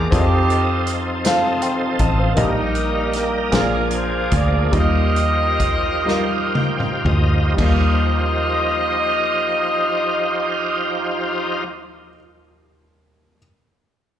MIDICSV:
0, 0, Header, 1, 6, 480
1, 0, Start_track
1, 0, Key_signature, -3, "major"
1, 0, Tempo, 759494
1, 73, Time_signature, 6, 3, 24, 8
1, 2474, Tempo, 817439
1, 2954, Tempo, 870827
1, 3434, Tempo, 940439
1, 3914, Tempo, 1038062
1, 4394, Tempo, 1096892
1, 7289, End_track
2, 0, Start_track
2, 0, Title_t, "Horn section"
2, 0, Program_c, 0, 61
2, 0, Note_on_c, 0, 68, 80
2, 80, Note_on_c, 0, 60, 61
2, 82, Note_off_c, 0, 68, 0
2, 83, Note_on_c, 0, 63, 69
2, 86, Note_on_c, 0, 67, 85
2, 589, Note_off_c, 0, 67, 0
2, 764, Note_off_c, 0, 60, 0
2, 766, Note_off_c, 0, 63, 0
2, 1511, Note_on_c, 0, 55, 65
2, 1514, Note_on_c, 0, 58, 64
2, 1516, Note_on_c, 0, 63, 91
2, 1963, Note_off_c, 0, 63, 0
2, 1990, Note_on_c, 0, 70, 82
2, 2205, Note_off_c, 0, 55, 0
2, 2207, Note_off_c, 0, 58, 0
2, 2230, Note_off_c, 0, 70, 0
2, 2239, Note_on_c, 0, 62, 71
2, 2240, Note_on_c, 0, 65, 74
2, 2242, Note_on_c, 0, 70, 87
2, 2466, Note_off_c, 0, 70, 0
2, 2491, Note_on_c, 0, 72, 79
2, 2719, Note_off_c, 0, 72, 0
2, 2732, Note_on_c, 0, 74, 89
2, 2937, Note_off_c, 0, 62, 0
2, 2938, Note_off_c, 0, 65, 0
2, 2964, Note_off_c, 0, 74, 0
2, 2972, Note_on_c, 0, 70, 80
2, 2974, Note_on_c, 0, 67, 80
2, 2976, Note_on_c, 0, 75, 108
2, 4137, Note_off_c, 0, 70, 0
2, 4138, Note_off_c, 0, 67, 0
2, 4157, Note_off_c, 0, 75, 0
2, 4400, Note_on_c, 0, 75, 92
2, 6169, Note_off_c, 0, 75, 0
2, 7289, End_track
3, 0, Start_track
3, 0, Title_t, "Upright piano"
3, 0, Program_c, 1, 0
3, 0, Control_c, 1, 64, 127
3, 0, Note_on_c, 1, 51, 63
3, 0, Note_on_c, 1, 67, 51
3, 0, Note_on_c, 1, 74, 51
3, 0, Note_on_c, 1, 78, 49
3, 0, Note_on_c, 1, 79, 62
3, 68, Note_on_c, 1, 60, 67
3, 76, Note_on_c, 1, 65, 59
3, 81, Control_c, 1, 64, 0
3, 82, Note_on_c, 1, 69, 60
3, 83, Note_off_c, 1, 79, 0
3, 84, Note_off_c, 1, 67, 0
3, 84, Note_off_c, 1, 74, 0
3, 84, Note_on_c, 1, 74, 55
3, 85, Note_off_c, 1, 78, 0
3, 86, Note_off_c, 1, 51, 0
3, 120, Note_off_c, 1, 74, 0
3, 127, Note_on_c, 1, 75, 68
3, 182, Control_c, 1, 64, 127
3, 732, Note_off_c, 1, 60, 0
3, 736, Note_off_c, 1, 65, 0
3, 739, Note_off_c, 1, 69, 0
3, 762, Note_off_c, 1, 75, 0
3, 790, Note_on_c, 1, 60, 69
3, 794, Note_on_c, 1, 65, 64
3, 800, Note_on_c, 1, 69, 64
3, 803, Note_on_c, 1, 77, 76
3, 1025, Note_on_c, 1, 84, 54
3, 1026, Note_on_c, 1, 79, 58
3, 1032, Note_off_c, 1, 77, 0
3, 1250, Note_off_c, 1, 84, 0
3, 1252, Note_off_c, 1, 79, 0
3, 1263, Note_on_c, 1, 81, 57
3, 1265, Note_on_c, 1, 75, 46
3, 1376, Note_off_c, 1, 75, 0
3, 1377, Note_on_c, 1, 77, 52
3, 1386, Note_on_c, 1, 72, 48
3, 1450, Note_off_c, 1, 60, 0
3, 1452, Note_off_c, 1, 65, 0
3, 1454, Note_off_c, 1, 69, 0
3, 1482, Note_on_c, 1, 58, 64
3, 1484, Note_off_c, 1, 81, 0
3, 1492, Note_on_c, 1, 63, 56
3, 1495, Note_on_c, 1, 46, 50
3, 1495, Note_on_c, 1, 67, 56
3, 1498, Note_on_c, 1, 75, 71
3, 1507, Control_c, 1, 64, 0
3, 1605, Note_off_c, 1, 77, 0
3, 1609, Note_off_c, 1, 72, 0
3, 1635, Control_c, 1, 64, 127
3, 2163, Note_off_c, 1, 58, 0
3, 2168, Note_off_c, 1, 63, 0
3, 2170, Note_off_c, 1, 67, 0
3, 2171, Note_off_c, 1, 75, 0
3, 2197, Note_off_c, 1, 46, 0
3, 2220, Note_on_c, 1, 58, 57
3, 2222, Note_on_c, 1, 65, 50
3, 2224, Note_on_c, 1, 46, 57
3, 2225, Note_on_c, 1, 68, 56
3, 2233, Control_c, 1, 64, 0
3, 2233, Note_on_c, 1, 72, 54
3, 2271, Note_off_c, 1, 72, 0
3, 2276, Note_on_c, 1, 74, 65
3, 2345, Control_c, 1, 64, 127
3, 2899, Note_off_c, 1, 58, 0
3, 2900, Note_off_c, 1, 65, 0
3, 2901, Note_off_c, 1, 68, 0
3, 2925, Note_off_c, 1, 74, 0
3, 2930, Note_off_c, 1, 46, 0
3, 2944, Note_on_c, 1, 55, 65
3, 2949, Note_on_c, 1, 63, 61
3, 2950, Note_on_c, 1, 65, 56
3, 2952, Note_on_c, 1, 51, 51
3, 2956, Note_on_c, 1, 75, 69
3, 2960, Control_c, 1, 64, 0
3, 3068, Control_c, 1, 64, 127
3, 3613, Note_off_c, 1, 55, 0
3, 3615, Note_off_c, 1, 63, 0
3, 3616, Note_off_c, 1, 65, 0
3, 3618, Note_off_c, 1, 75, 0
3, 3647, Note_off_c, 1, 51, 0
3, 3662, Note_on_c, 1, 55, 64
3, 3668, Note_on_c, 1, 63, 59
3, 3670, Note_on_c, 1, 65, 63
3, 3677, Note_on_c, 1, 70, 65
3, 4337, Note_off_c, 1, 55, 0
3, 4340, Note_off_c, 1, 63, 0
3, 4341, Note_off_c, 1, 65, 0
3, 4344, Note_off_c, 1, 70, 0
3, 4374, Note_on_c, 1, 55, 66
3, 4389, Note_on_c, 1, 63, 55
3, 4395, Note_on_c, 1, 39, 57
3, 4401, Control_c, 1, 64, 0
3, 4404, Note_on_c, 1, 65, 56
3, 4414, Note_on_c, 1, 75, 68
3, 4481, Control_c, 1, 64, 127
3, 6365, Note_off_c, 1, 55, 0
3, 6379, Note_off_c, 1, 63, 0
3, 6385, Note_off_c, 1, 39, 0
3, 6394, Note_off_c, 1, 65, 0
3, 6405, Note_off_c, 1, 75, 0
3, 6933, Control_c, 1, 64, 0
3, 7289, End_track
4, 0, Start_track
4, 0, Title_t, "Tonewheel organ"
4, 0, Program_c, 2, 16
4, 0, Note_on_c, 2, 58, 58
4, 69, Note_on_c, 2, 63, 53
4, 69, Note_on_c, 2, 68, 49
4, 71, Note_on_c, 2, 60, 55
4, 73, Note_off_c, 2, 58, 0
4, 75, Note_on_c, 2, 53, 52
4, 112, Note_off_c, 2, 68, 0
4, 115, Note_on_c, 2, 69, 57
4, 1472, Note_off_c, 2, 63, 0
4, 1473, Note_off_c, 2, 60, 0
4, 1474, Note_off_c, 2, 53, 0
4, 1494, Note_off_c, 2, 69, 0
4, 1502, Note_on_c, 2, 63, 49
4, 1503, Note_on_c, 2, 58, 49
4, 1503, Note_on_c, 2, 70, 63
4, 1504, Note_on_c, 2, 53, 41
4, 1542, Note_off_c, 2, 53, 0
4, 1544, Note_on_c, 2, 55, 58
4, 2217, Note_off_c, 2, 58, 0
4, 2222, Note_on_c, 2, 53, 50
4, 2224, Note_on_c, 2, 58, 51
4, 2224, Note_on_c, 2, 62, 54
4, 2226, Note_off_c, 2, 63, 0
4, 2227, Note_off_c, 2, 70, 0
4, 2227, Note_on_c, 2, 68, 64
4, 2247, Note_off_c, 2, 55, 0
4, 2953, Note_off_c, 2, 53, 0
4, 2954, Note_off_c, 2, 58, 0
4, 2954, Note_off_c, 2, 62, 0
4, 2955, Note_off_c, 2, 68, 0
4, 2959, Note_on_c, 2, 63, 51
4, 2959, Note_on_c, 2, 67, 60
4, 2960, Note_on_c, 2, 65, 48
4, 2963, Note_on_c, 2, 53, 55
4, 3926, Note_on_c, 2, 79, 52
4, 4138, Note_off_c, 2, 79, 0
4, 4156, Note_on_c, 2, 75, 53
4, 4378, Note_off_c, 2, 63, 0
4, 4378, Note_off_c, 2, 65, 0
4, 4378, Note_off_c, 2, 67, 0
4, 4380, Note_off_c, 2, 53, 0
4, 4382, Note_off_c, 2, 75, 0
4, 4398, Note_on_c, 2, 67, 74
4, 4402, Note_on_c, 2, 63, 60
4, 4403, Note_on_c, 2, 65, 54
4, 4404, Note_on_c, 2, 53, 69
4, 6168, Note_off_c, 2, 67, 0
4, 6170, Note_off_c, 2, 63, 0
4, 6170, Note_off_c, 2, 65, 0
4, 6171, Note_off_c, 2, 53, 0
4, 7289, End_track
5, 0, Start_track
5, 0, Title_t, "Fingered electric bass"
5, 0, Program_c, 3, 33
5, 78, Note_on_c, 3, 41, 92
5, 1238, Note_off_c, 3, 41, 0
5, 1260, Note_on_c, 3, 33, 68
5, 1479, Note_off_c, 3, 33, 0
5, 1502, Note_on_c, 3, 34, 90
5, 2201, Note_off_c, 3, 34, 0
5, 2229, Note_on_c, 3, 34, 83
5, 2690, Note_off_c, 3, 34, 0
5, 2712, Note_on_c, 3, 38, 64
5, 2935, Note_off_c, 3, 38, 0
5, 2953, Note_on_c, 3, 39, 96
5, 4129, Note_off_c, 3, 39, 0
5, 4148, Note_on_c, 3, 38, 75
5, 4376, Note_off_c, 3, 38, 0
5, 4396, Note_on_c, 3, 39, 72
5, 6386, Note_off_c, 3, 39, 0
5, 7289, End_track
6, 0, Start_track
6, 0, Title_t, "Drums"
6, 77, Note_on_c, 9, 36, 95
6, 79, Note_on_c, 9, 42, 66
6, 140, Note_off_c, 9, 36, 0
6, 142, Note_off_c, 9, 42, 0
6, 316, Note_on_c, 9, 42, 44
6, 379, Note_off_c, 9, 42, 0
6, 547, Note_on_c, 9, 42, 56
6, 611, Note_off_c, 9, 42, 0
6, 787, Note_on_c, 9, 42, 82
6, 796, Note_on_c, 9, 38, 82
6, 851, Note_off_c, 9, 42, 0
6, 860, Note_off_c, 9, 38, 0
6, 1022, Note_on_c, 9, 42, 51
6, 1085, Note_off_c, 9, 42, 0
6, 1258, Note_on_c, 9, 42, 59
6, 1262, Note_on_c, 9, 36, 69
6, 1321, Note_off_c, 9, 42, 0
6, 1325, Note_off_c, 9, 36, 0
6, 1495, Note_on_c, 9, 42, 62
6, 1499, Note_on_c, 9, 36, 82
6, 1558, Note_off_c, 9, 42, 0
6, 1563, Note_off_c, 9, 36, 0
6, 1737, Note_on_c, 9, 42, 44
6, 1801, Note_off_c, 9, 42, 0
6, 1980, Note_on_c, 9, 42, 57
6, 1993, Note_on_c, 9, 38, 24
6, 2043, Note_off_c, 9, 42, 0
6, 2056, Note_off_c, 9, 38, 0
6, 2225, Note_on_c, 9, 42, 77
6, 2234, Note_on_c, 9, 38, 80
6, 2289, Note_off_c, 9, 42, 0
6, 2298, Note_off_c, 9, 38, 0
6, 2468, Note_on_c, 9, 42, 45
6, 2527, Note_off_c, 9, 42, 0
6, 2709, Note_on_c, 9, 42, 61
6, 2712, Note_on_c, 9, 36, 67
6, 2767, Note_off_c, 9, 42, 0
6, 2771, Note_off_c, 9, 36, 0
6, 2951, Note_on_c, 9, 42, 61
6, 2953, Note_on_c, 9, 36, 85
6, 3006, Note_off_c, 9, 42, 0
6, 3008, Note_off_c, 9, 36, 0
6, 3190, Note_on_c, 9, 42, 45
6, 3245, Note_off_c, 9, 42, 0
6, 3431, Note_on_c, 9, 42, 55
6, 3432, Note_on_c, 9, 36, 72
6, 3483, Note_off_c, 9, 36, 0
6, 3483, Note_off_c, 9, 42, 0
6, 3680, Note_on_c, 9, 38, 42
6, 3731, Note_off_c, 9, 38, 0
6, 3918, Note_on_c, 9, 48, 64
6, 3964, Note_off_c, 9, 48, 0
6, 4033, Note_on_c, 9, 47, 62
6, 4079, Note_off_c, 9, 47, 0
6, 4151, Note_on_c, 9, 45, 70
6, 4197, Note_off_c, 9, 45, 0
6, 4395, Note_on_c, 9, 36, 80
6, 4396, Note_on_c, 9, 49, 65
6, 4439, Note_off_c, 9, 36, 0
6, 4439, Note_off_c, 9, 49, 0
6, 7289, End_track
0, 0, End_of_file